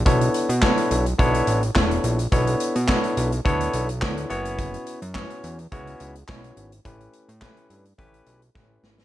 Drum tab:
HH |xxxx-xxxxxxx-xxx|xxxx-xxxxxxx-xxx|xxxx-xxxxxxx-xxx|xxxx-xxxxxxx----|
CP |----x-------x---|----x-------x---|----x-------x---|----x-----------|
SD |----o-------o---|----o-------o---|----o-------o---|----o-------o-oo|
BD |o---o---o---o---|o---o---o---o---|o---o---o---o---|o---o---o---o---|